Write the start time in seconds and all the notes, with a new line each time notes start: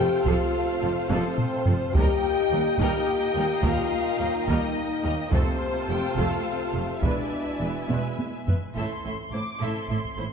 Already playing: C3 A3 C4 F4 G4 A4 C5 F5 G5
0.25 F1 F2 F3 F4 A4 F5, taiko
0.82 F1 F2 F3 A4
1.09 F1 F2 F3 C4 A4 C5, taiko high
1.38 taiko low-mid
1.66 F1 F2 F3 A4, taiko low
1.95 D#2 A#2 G3 A#3 D#4 G4 A#4 D#5 G5, taiko
2.51 D#2 G3 A#4
2.79 D#2 G3 G4 A#4 G5, taiko
3.35 D#2 G3 A#4
3.63 D#2 G3 F4 A#4 F5, taiko
4.19 D#2 G3 A#4
4.47 D#2 G3 D#4 A#4 D#5, taiko
5.04 D#2 G3 A#4
5.31 F1 F2 C3 A3 C4 F4 A4 C5 A5, taiko
5.88 F1 F2 A3 G4 A4 G5
6.16 F1 F2 A3 F4 A4 F5, taiko
6.73 F1 F2 A3 A4
7.02 E1 E2 B2 G#3 B3 D4 E4 B4 D5 E5 G#5, taiko
7.60 E1 E2 G#3 B4
7.89 E1 E2 G#3 B4, taiko high
8.19 taiko high
8.47 E1 E2 G#3 B4, taiko low
8.75 A1 A2 E3 A3 C4 E4 A4 E5 C6, taiko
9.04 A1 A2 A3 E4 A4 E5
9.32 A1 A2 A3 E4 C5 D6
9.60 A1 A2 A3 E4 A4 E5 C6
9.88 A1 A2 A3 E4 A4 E5
10.04 taiko
10.16 A1 A2 A3 E4 C5